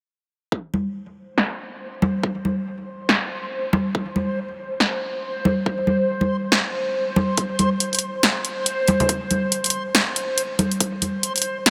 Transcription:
0.52 11.70 C5 medium
0.52 kick loud
0.74 high conga medium
1.38 snare loud
2.02 high conga medium
2.23 kick loud
2.45 high conga medium
3.09 snare loud
3.73 high conga loud
3.95 kick loud
4.16 high conga medium
4.80 snare loud
5.45 high conga medium
5.66 kick loud
5.87 high conga medium
6.21 high conga medium
6.52 snare loud
7.16 high conga loud
7.37 kick loud
7.37 closed hi-hat medium
7.59 closed hi-hat soft
7.59 high conga medium
7.80 closed hi-hat medium
7.93 closed hi-hat soft
7.95 closed hi-hat medium
7.99 closed hi-hat medium
8.23 snare loud
8.23 closed hi-hat medium
8.45 closed hi-hat soft
8.66 closed hi-hat medium
8.88 closed hi-hat soft
8.88 high conga loud
9.00 closed hi-hat soft
9.00 low conga medium
9.09 kick loud
9.09 closed hi-hat medium
9.31 closed hi-hat soft
9.31 high conga medium
9.52 closed hi-hat medium
9.64 closed hi-hat soft
9.66 closed hi-hat medium
9.70 closed hi-hat medium
9.95 snare loud
9.95 closed hi-hat medium
10.16 closed hi-hat soft
10.38 closed hi-hat medium
10.59 closed hi-hat soft
10.59 high conga medium
10.71 closed hi-hat soft
10.80 kick loud
10.80 closed hi-hat medium
11.02 closed hi-hat soft
11.02 high conga medium
11.23 closed hi-hat medium
11.36 closed hi-hat soft
11.38 closed hi-hat medium
11.42 closed hi-hat medium
11.66 snare loud
11.66 closed hi-hat medium

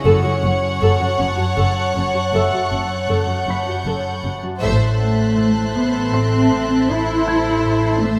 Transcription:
0.00 2.06 C#4 medium
0.05 0.13 F#1 medium
0.05 0.80 F#2 medium
0.05 0.13 F#2 medium
0.05 0.24 A4 medium
0.05 4.42 C#5 medium
0.05 4.58 C#5 soft
0.05 4.38 F#5 medium
0.05 4.62 F#5 soft
0.05 4.61 A5 soft
0.05 4.20 C#6 soft
0.25 0.33 F#2 soft
0.25 0.32 F#4 soft
0.43 0.51 F#1 soft
0.43 0.52 F#2 soft
0.43 2.70 F#3 soft
0.43 0.51 C#4 soft
0.81 0.89 F#1 medium
0.81 1.17 F#2 soft
0.81 0.89 F#2 medium
0.81 1.00 A4 medium
0.81 3.35 F#6 soft
1.00 1.08 F#2 soft
1.00 1.08 F#4 soft
1.18 1.28 F#1 soft
1.18 1.55 F#2 medium
1.18 1.27 F#2 soft
1.18 1.27 C#4 soft
1.36 1.46 F#2 soft
1.36 1.44 F#4 soft
1.56 1.65 F#1 soft
1.56 1.94 F#2 soft
1.56 1.65 F#2 medium
1.56 1.75 A4 soft
1.95 2.03 F#1 soft
1.95 2.03 F#2 soft
1.95 2.32 F#2 soft
1.95 2.03 C#4 soft
2.14 2.22 F#2 soft
2.14 2.21 F#4 soft
2.33 2.41 F#1 soft
2.33 3.08 F#2 soft
2.33 2.41 F#2 soft
2.33 2.51 A4 soft
2.33 4.58 E5 soft
2.33 4.59 E6 soft
2.51 2.59 F#2 soft
2.51 2.61 F#4 soft
2.71 2.79 F#1 soft
2.71 2.79 F#2 soft
2.71 4.64 F#3 soft
2.71 2.80 C#4 soft
3.09 3.17 F#1 soft
3.09 3.17 F#2 soft
3.09 3.46 F#2 soft
3.09 3.27 A4 soft
3.27 3.35 F#2 soft
3.27 3.36 F#4 soft
3.35 4.19 G6 soft
3.46 3.55 F#1 soft
3.46 3.54 F#2 soft
3.46 3.84 F#2 soft
3.46 3.55 C#4 soft
3.46 4.59 B5 soft
3.46 4.59 B6 soft
3.65 3.73 F#2 soft
3.65 3.74 F#4 soft
3.84 3.93 F#1 soft
3.84 3.92 F#2 soft
3.84 4.22 F#2 soft
3.84 4.04 A4 soft
4.23 4.31 F#1 soft
4.23 4.30 F#2 soft
4.23 4.65 F#2 soft
4.23 4.31 C#4 soft
4.41 4.49 F#2 soft
4.41 4.50 F#4 soft
4.61 8.19 A1 medium
4.61 5.36 A2 medium
4.61 8.19 A4 soft
4.61 8.19 C5 medium
4.61 8.19 E5 medium
4.61 8.19 A5 medium
4.61 8.19 C6 medium
4.61 8.19 C6 soft
4.61 8.00 F#6 soft
4.98 5.71 A3 soft
4.98 7.26 A3 soft
5.37 5.74 A2 soft
5.74 6.11 A2 medium
5.74 6.13 B3 medium
6.12 6.50 A2 soft
6.12 6.89 C4 medium
6.12 8.19 C6 soft
6.12 8.19 C7 soft
6.51 6.88 A2 soft
6.88 7.64 A2 medium
6.88 8.03 E4 medium
7.27 8.19 A3 soft
7.27 8.19 G#6 soft
7.65 8.01 A2 soft
8.02 8.19 A2 medium
8.02 8.19 A3 medium

